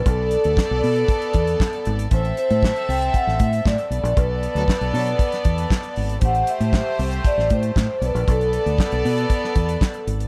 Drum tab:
HH |x-xx--oxxxxx-xxx|xxxx-xoxx-xx-xxx|x-xx-xoxxxxx-xox|xxxx--oxx-xx--xx|
CP |----x-------x---|----x-------x---|----x-------x---|----x-------x---|
SD |----o-------o---|----o----o--o---|----o----o--o---|----o----o--o---|
BD |o---o---o-o-o---|o---o---o-o-o---|o---o---o-o-o---|o---o---o-o-o---|

HH |xxxx-xoxx-xx-xxx|
CP |----x-------x---|
SD |----o----o--o---|
BD |o---o---o-o-o---|